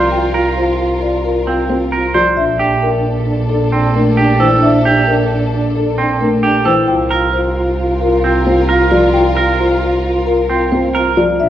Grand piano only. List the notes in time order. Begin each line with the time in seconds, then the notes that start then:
Already playing: F3
1.70 C4
2.15 F3
3.95 A3
4.40 E3
6.21 A3
6.66 E3
8.46 C4
8.91 F3
10.72 C4
11.17 F3